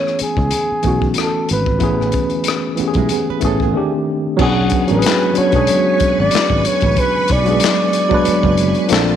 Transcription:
Already playing: tine electric piano E3 A3 B3 C#4 G#4, flugelhorn C#5
0.07 cross-stick
0.19 flugelhorn G#4, muted fretless electric bass stroke, closed hi-hat
0.37 fretless electric bass C#2, kick
0.51 closed hi-hat
0.72 muted fretless electric bass stroke
0.82 fretless electric bass B1, tine electric piano E3 A3 B3 C#4, kick, closed hi-hat
0.87 tine electric piano F#4
1.02 kick
1.14 closed hi-hat
1.18 flugelhorn A4, cross-stick
1.49 fretless electric bass G#1, flugelhorn B4, closed hi-hat
1.66 kick
1.79 fretless electric bass A1, tine electric piano E3 A3 B3 C#4, kick, closed hi-hat
1.83 tine electric piano G#4
2.01 cross-stick
2.12 kick, closed hi-hat
2.30 closed hi-hat
2.44 closed hi-hat
2.48 cross-stick
2.76 tine electric piano E3 A3 B3 C#4, muted fretless electric bass stroke, closed hi-hat
2.81 tine electric piano G4
2.88 tine electric piano G#4
2.94 fretless electric bass B1, nylon-string guitar E4, kick, closed hi-hat
2.98 nylon-string guitar G#3
3.09 nylon-string guitar B3 G#4, closed hi-hat
3.30 nylon-string guitar B4, muted fretless electric bass stroke
3.40 fretless electric bass A1, tine electric piano E3 A3 B3 C#4, kick, closed hi-hat
3.45 nylon-string guitar C#4 A4, tine electric piano G#4
3.60 nylon-string guitar B3 G#4, kick
3.73 tine electric piano D#3 A3 C4 D4
3.77 tine electric piano G4
4.37 fretless electric bass B1, tine electric piano F#3 B3 C#4 D4, string machine B4 G#5 C#6, kick, crash
4.41 flugelhorn F#4, tine electric piano G#4
4.70 kick, closed hi-hat
4.87 fretless electric bass A1, tine electric piano F#3 B3 C#4 D4, flugelhorn B4, closed hi-hat
4.93 tine electric piano F#4
4.99 tine electric piano G#4, closed hi-hat
5.07 snare, clap
5.33 tine electric piano F#3 B3 C#4 D4, closed hi-hat
5.38 tine electric piano F#4, flugelhorn C#5, muted fretless electric bass stroke
5.51 fretless electric bass B1, tine electric piano F#3 G#3 B3 D4, kick, closed hi-hat
5.56 tine electric piano G#4
5.67 closed hi-hat
6.00 muted fretless electric bass stroke, kick, closed hi-hat
6.20 fretless electric bass G#1, flugelhorn D5
6.31 muted fretless electric bass stroke, closed hi-hat
6.35 snare, clap
6.50 fretless electric bass G#1, kick
6.65 flugelhorn C#5, closed hi-hat
6.80 fretless electric bass A1, kick, closed hi-hat
6.96 flugelhorn B4, kick, closed hi-hat
7.28 fretless electric bass B1, kick, closed hi-hat
7.32 flugelhorn D5
7.45 tine electric piano F#3 G#3 B3 D4, closed hi-hat
7.50 tine electric piano G#4
7.60 closed hi-hat
7.64 snare, clap
7.93 closed hi-hat
8.09 tine electric piano F#3 G#3 B3 D4, kick
8.14 tine electric piano B4
8.25 muted fretless electric bass stroke, closed hi-hat
8.43 fretless electric bass F#1, kick
8.57 closed hi-hat
8.74 closed hi-hat
8.88 fretless electric bass A#1, tine electric piano F3 A#3 C4 D4, string machine A#3 A5 C6, closed hi-hat
8.93 tine electric piano A4, snare, clap

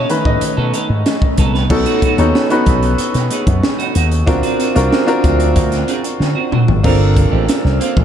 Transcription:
Already playing: grand piano C#5 D#5 E5
0.09 grand piano D#3 A3 C#4 B4, muted clean electric guitar stroke, closed hi-hat
0.25 slap bass A2, grand piano D#5, muted clean electric guitar stroke, kick
0.41 muted clean electric guitar stroke, muted slap bass stroke, closed hi-hat
0.57 slap bass B2, clean electric guitar B3 D#4 A4
0.73 clean electric guitar B3 D#4 A4, closed hi-hat
0.89 slap bass G#2, muted clean electric guitar stroke
1.05 muted clean electric guitar stroke, snare, closed hi-hat
1.22 muted clean electric guitar stroke, kick
1.38 slap bass C2, clean electric guitar B3 D#4 A4, kick, closed hi-hat
1.54 clean electric guitar B3 D#4 B4, snare
1.70 slap bass B1, grand piano B3 C#4 D#4 F#4 A4, muted clean electric guitar stroke, kick, crash
1.86 clean electric guitar A3 D#4 F#4, closed hi-hat
2.02 clean electric guitar A3 D#4 F#4, kick, closed hi-hat
2.18 slap bass D#2, grand piano B3 C#4 D#4 F#4 A4, muted clean electric guitar stroke, closed hi-hat
2.34 muted clean electric guitar stroke, snare
2.50 grand piano B3 C#4 D#4 F#4 B4, muted clean electric guitar stroke, closed hi-hat
2.66 slap bass B1, kick, closed hi-hat
2.82 muted clean electric guitar stroke, closed hi-hat
2.98 closed hi-hat
3.14 slap bass B2, muted clean electric guitar stroke, snare, closed hi-hat
3.30 clean electric guitar A3 D#4 G#4, closed hi-hat
3.46 slap bass F#2, muted clean electric guitar stroke, kick, closed hi-hat
3.63 muted clean electric guitar stroke, snare
3.79 clean electric guitar A3 D#4 F#4, closed hi-hat
3.94 slap bass D#2, clean electric guitar A3 D#4 F#4, closed hi-hat
4.11 muted clean electric guitar stroke, closed hi-hat
4.26 slap bass D2, grand piano C4 D4 F4 F#4 A#4, muted clean electric guitar stroke, kick, closed hi-hat
4.43 clean electric guitar C4 D4 F#4, closed hi-hat
4.59 clean electric guitar C4 D4 F#4, closed hi-hat
4.75 slap bass C2, grand piano C4 D4 F4 F#4 A#4, muted clean electric guitar stroke, closed hi-hat
4.91 muted clean electric guitar stroke, snare
5.07 grand piano C4 D4 F4 F#4 A#4, muted clean electric guitar stroke, closed hi-hat
5.24 slap bass D2, kick, closed hi-hat
5.39 muted clean electric guitar stroke, closed hi-hat
5.56 slap bass D2, kick, closed hi-hat
5.71 muted clean electric guitar stroke, snare, closed hi-hat
5.88 clean electric guitar C4 D4 G#4, closed hi-hat
6.03 muted clean electric guitar stroke, closed hi-hat
6.20 slap bass D3, muted clean electric guitar stroke, snare
6.35 clean electric guitar C4 D4 F#4
6.51 slap bass A#2, clean electric guitar C4 D4 F#4, mid tom
6.68 slap bass G#1, muted clean electric guitar stroke, floor tom
6.83 slap bass G1, clean electric guitar A#3 C4 F4, grand piano C4 D4 F4 A4 A#4, kick, crash
7.00 muted clean electric guitar stroke
7.16 muted clean electric guitar stroke, kick, closed hi-hat
7.32 slap bass A1, clean electric guitar A#3 C4 G4
7.49 snare, closed hi-hat
7.64 slap bass C2, muted clean electric guitar stroke, snare
7.80 clean electric guitar A#3 C4 F4, closed hi-hat
7.96 slap bass A1, muted clean electric guitar stroke, kick

